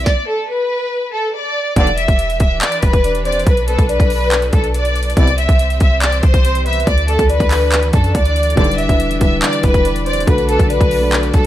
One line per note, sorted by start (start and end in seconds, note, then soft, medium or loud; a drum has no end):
0.06 0.24 D5 medium
0.06 kick loud
0.06 snare medium
0.27 0.46 A4 medium
0.49 1.09 B4 medium
1.12 1.31 A4 medium
1.34 1.74 D5 medium
1.76 2.07 E1 loud
1.76 1.90 B1 loud
1.76 1.90 G2 loud
1.76 1.90 D3 loud
1.76 3.45 E3 medium
1.76 5.13 D4 medium
1.76 3.45 G4 medium
1.76 5.13 B4 medium
1.76 1.95 D5 loud
1.76 kick loud
1.76 closed hi-hat medium
1.87 closed hi-hat medium
1.97 2.37 E5 medium
1.97 closed hi-hat medium
2.08 2.39 E1 loud
2.08 kick medium
2.08 closed hi-hat medium
2.19 closed hi-hat medium
2.30 closed hi-hat medium
2.40 2.61 D1 loud
2.40 2.59 E5 medium
2.40 kick loud
2.40 closed hi-hat medium
2.61 2.80 D5 medium
2.61 clap loud
2.61 closed hi-hat medium
2.72 closed hi-hat medium
2.82 3.44 E1 loud
2.82 3.23 B4 medium
2.82 kick loud
2.82 closed hi-hat medium
2.93 kick medium
2.93 closed hi-hat medium
3.04 3.24 D5 medium
3.04 closed hi-hat medium
3.15 closed hi-hat medium
3.25 3.45 C5 medium
3.25 3.44 D5 medium
3.25 closed hi-hat medium
3.32 closed hi-hat medium
3.39 closed hi-hat medium
3.46 3.77 B1 loud
3.46 5.15 F#3 medium
3.46 5.15 A4 medium
3.46 3.65 B4 medium
3.46 kick loud
3.46 closed hi-hat medium
3.57 closed hi-hat medium
3.68 3.86 A4 medium
3.68 3.88 B4 loud
3.68 closed hi-hat medium
3.79 3.99 B1 loud
3.79 kick medium
3.79 closed hi-hat medium
3.89 4.49 B4 loud
3.89 4.70 D5 medium
3.89 closed hi-hat medium
4.00 4.51 B1 loud
4.00 kick loud
4.00 closed hi-hat medium
4.10 open hi-hat medium
4.31 clap loud
4.31 closed hi-hat medium
4.42 closed hi-hat medium
4.53 5.14 B1 loud
4.53 4.71 A4 medium
4.53 kick medium
4.53 closed hi-hat medium
4.64 closed hi-hat medium
4.74 5.14 D5 medium
4.74 closed hi-hat medium
4.85 closed hi-hat medium
4.96 closed hi-hat medium
5.03 closed hi-hat medium
5.10 closed hi-hat medium
5.17 5.47 C2 loud
5.17 5.30 C2 loud
5.17 5.30 B2 loud
5.17 10.23 E3 medium
5.17 5.30 E3 loud
5.17 6.85 C4 medium
5.17 6.85 G4 medium
5.17 6.85 C5 medium
5.17 5.35 D5 loud
5.17 kick loud
5.17 closed hi-hat medium
5.27 closed hi-hat medium
5.38 5.78 E5 medium
5.38 closed hi-hat medium
5.49 5.79 C2 loud
5.49 kick medium
5.49 closed hi-hat medium
5.59 closed hi-hat medium
5.70 closed hi-hat medium
5.80 6.21 C2 loud
5.80 5.99 E5 medium
5.80 kick medium
5.80 closed hi-hat medium
6.01 6.20 D5 medium
6.01 clap loud
6.01 closed hi-hat medium
6.12 closed hi-hat medium
6.23 6.84 C2 loud
6.23 6.63 C5 medium
6.23 kick medium
6.23 closed hi-hat medium
6.34 kick medium
6.34 closed hi-hat medium
6.44 6.65 C5 medium
6.44 closed hi-hat medium
6.55 closed hi-hat medium
6.66 6.86 B4 medium
6.66 6.84 E5 medium
6.66 closed hi-hat medium
6.73 closed hi-hat medium
6.80 closed hi-hat medium
6.87 7.18 D2 loud
6.87 11.46 D4 medium
6.87 8.56 F#4 medium
6.87 8.56 A4 medium
6.87 7.05 D5 medium
6.87 kick loud
6.87 closed hi-hat medium
6.98 closed hi-hat medium
7.08 7.27 A4 medium
7.08 7.29 A4 loud
7.08 closed hi-hat medium
7.19 7.39 D2 loud
7.19 kick medium
7.19 closed hi-hat medium
7.30 7.90 B4 loud
7.30 8.53 D5 medium
7.30 closed hi-hat medium
7.40 7.91 D2 loud
7.40 kick loud
7.40 closed hi-hat medium
7.51 clap medium
7.51 open hi-hat medium
7.72 clap loud
7.72 closed hi-hat medium
7.83 closed hi-hat medium
7.93 8.14 F#2 loud
7.93 8.12 A4 medium
7.93 kick medium
7.93 closed hi-hat medium
8.04 closed hi-hat medium
8.15 8.56 D2 loud
8.15 8.55 D5 medium
8.15 kick medium
8.15 closed hi-hat medium
8.25 closed hi-hat medium
8.36 closed hi-hat medium
8.43 closed hi-hat medium
8.50 closed hi-hat medium
8.56 8.88 E1 loud
8.56 8.71 B1 loud
8.56 8.71 G2 loud
8.56 8.84 D3 loud
8.56 8.71 D3 loud
8.56 8.84 G3 medium
8.56 8.85 E4 medium
8.56 10.26 G4 medium
8.56 8.85 B4 loud
8.56 8.76 D5 loud
8.56 11.46 D5 medium
8.56 kick loud
8.56 closed hi-hat medium
8.64 closed hi-hat medium
8.71 closed hi-hat medium
8.78 9.18 E5 medium
8.78 closed hi-hat medium
8.88 9.20 E1 loud
8.88 9.16 D3 medium
8.88 9.17 G3 medium
8.88 9.17 E4 medium
8.88 9.17 B4 medium
8.88 kick medium
8.88 closed hi-hat medium
9.00 closed hi-hat medium
9.11 closed hi-hat medium
9.20 9.42 D1 loud
9.20 9.57 D3 medium
9.20 9.58 G3 medium
9.20 9.58 E4 medium
9.20 9.58 B4 medium
9.20 9.39 E5 medium
9.20 kick medium
9.20 closed hi-hat medium
9.42 9.61 D5 medium
9.42 clap loud
9.42 closed hi-hat medium
9.53 closed hi-hat medium
9.63 10.25 E1 loud
9.63 10.19 D3 medium
9.63 10.19 G3 medium
9.63 10.19 E4 medium
9.63 10.04 B4 medium
9.63 10.20 B4 medium
9.63 kick loud
9.63 closed hi-hat medium
9.74 kick medium
9.74 closed hi-hat medium
9.85 10.05 D5 medium
9.85 closed hi-hat medium
9.96 closed hi-hat medium
10.06 10.26 C5 medium
10.06 10.24 D5 medium
10.06 closed hi-hat medium
10.13 closed hi-hat medium
10.20 closed hi-hat medium
10.27 10.58 B1 loud
10.27 10.55 D3 loud
10.27 11.46 F#3 medium
10.27 10.55 A3 loud
10.27 10.55 F#4 medium
10.27 11.46 A4 medium
10.27 10.46 B4 medium
10.27 10.56 B4 loud
10.27 kick loud
10.27 closed hi-hat medium
10.38 closed hi-hat medium
10.49 10.67 A4 medium
10.49 10.69 B4 loud
10.49 closed hi-hat medium
10.59 10.80 B1 loud
10.59 10.96 D3 medium
10.59 10.96 A3 medium
10.59 10.97 F#4 medium
10.59 10.97 B4 medium
10.59 kick medium
10.59 closed hi-hat medium
10.70 11.30 B4 loud
10.70 11.46 D5 medium
10.70 closed hi-hat medium
10.81 11.32 B1 loud
10.81 kick loud
10.81 closed hi-hat medium
10.91 open hi-hat medium
11.01 11.46 D3 medium
11.01 11.46 A3 medium
11.01 11.46 F#4 medium
11.01 11.46 B4 medium
11.12 clap loud
11.12 closed hi-hat medium
11.23 closed hi-hat medium
11.34 11.46 B1 loud
11.34 11.46 A4 medium
11.34 kick medium
11.34 closed hi-hat medium